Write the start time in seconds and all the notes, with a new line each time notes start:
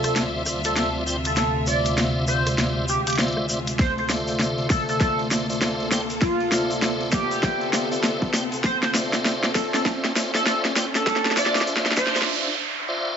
Already playing: D2 C3 F4 C5 D5 E5, riser
0.04 A4, cross-stick, closed hi-hat, shaker
0.16 snare, closed hi-hat, shaker
0.46 F4 C5 D5 E5, cross-stick, shaker
0.64 F4 A4 C5 D5 E5, closed hi-hat, shaker
0.76 A4, snare, closed hi-hat, shaker
1.06 F4 C5 D5 G5, shaker
1.25 A4, closed hi-hat, shaker
1.36 snare, closed hi-hat, shaker
1.67 F4 C5 D5 E5, shaker
1.85 closed hi-hat, shaker
1.97 snare, closed hi-hat, shaker
2.27 F4 C5 D5 E5, shaker
2.47 cross-stick, closed hi-hat, shaker
2.58 snare, closed hi-hat, shaker
2.88 G4, shaker
3.07 G4, closed hi-hat, shaker
3.10 closed hi-hat
3.13 closed hi-hat
3.15 snare, closed hi-hat
3.19 F4 C5 D5 E5, closed hi-hat, shaker
3.23 closed hi-hat
3.28 closed hi-hat
3.32 closed hi-hat
3.37 cross-stick
3.49 F4 C5 D5 E5, shaker
3.67 closed hi-hat, shaker
3.79 A4 C5, kick, snare, open hi-hat, shaker
3.98 C5, open hi-hat
4.09 F4 C5 D5 E5, snare, open hi-hat, shaker
4.27 open hi-hat, shaker
4.40 snare, open hi-hat, shaker
4.58 open hi-hat
4.70 F4 A4 C5 D5 E5, kick, snare, open hi-hat, shaker
4.89 A4, open hi-hat, shaker
5.00 A4, kick, snare, open hi-hat, shaker
5.19 open hi-hat
5.31 F4 C5 D5 E5, snare, open hi-hat, shaker
5.49 F4 C5 D5 E5, open hi-hat, shaker
5.61 snare, open hi-hat, shaker
5.80 open hi-hat
5.91 F4 C5 D5 G5, snare, open hi-hat, shaker
6.10 open hi-hat, shaker
6.22 F4, kick, snare, open hi-hat, shaker
6.40 open hi-hat
6.52 F4 C5 D5 E5, snare, open hi-hat, shaker
6.71 open hi-hat, shaker
6.82 snare, open hi-hat, shaker
7.01 open hi-hat
7.12 F4 G4 C5 D5 E5, kick, snare, open hi-hat, shaker
7.31 open hi-hat, shaker
7.43 kick, snare, open hi-hat, shaker
7.61 open hi-hat
7.73 F4 C5 D5 E5, snare, open hi-hat, shaker
7.91 F4 C5 D5 E5, open hi-hat, shaker
8.04 snare, open hi-hat, shaker
8.22 kick, open hi-hat
8.34 F4 C5 D5 G5, snare, open hi-hat, shaker
8.52 open hi-hat, shaker
8.64 C5, kick, snare, open hi-hat, shaker
8.83 C5, snare, open hi-hat
8.94 F4 C5 D5 E5, snare, open hi-hat, shaker
9.13 snare, open hi-hat, shaker
9.25 snare, open hi-hat, shaker
9.43 snare
9.54 F4 A4 C5 D5 E5, kick, snare, open hi-hat, shaker
9.74 A4, snare, open hi-hat, shaker
9.85 kick, snare, open hi-hat, shaker
10.05 snare, open hi-hat
10.15 F4 C5 D5 E5, snare, open hi-hat, shaker
10.34 F4 A4 C5 D5 E5, snare, open hi-hat, shaker
10.46 A4, snare, open hi-hat, shaker
10.65 snare, open hi-hat
10.76 F4 C5 D5 G5, snare, open hi-hat, shaker
10.95 A4, snare, open hi-hat, shaker
11.06 kick, snare, open hi-hat, noise sweep, shaker
11.16 snare
11.25 snare, open hi-hat
11.31 snare
11.37 F4 C5 D5 E5, snare, open hi-hat, shaker
11.46 snare
11.55 snare, open hi-hat, shaker
11.61 snare
11.67 open hi-hat, shaker
11.77 snare
11.86 snare, open hi-hat
11.92 snare
11.96 F4 C5 D5 E5, kick, snare, open hi-hat, shaker
12.07 snare
12.15 snare, open hi-hat, shaker
12.22 snare
12.89 F4 C5 D5 E5